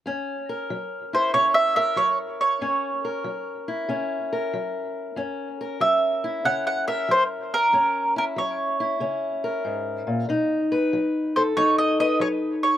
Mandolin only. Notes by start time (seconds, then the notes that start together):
1.15 C5
1.34 C#5
1.54 E5
1.76 E5
1.97 C#5
2.41 C#5
5.81 E5
6.45 F#5
6.67 F#5
6.88 E5
7.11 C5
7.54 A#4
8.18 A#4
8.38 C#5
11.36 C5
11.57 C#5
11.78 D#5
12.00 D#5
12.21 C#5
12.63 C#5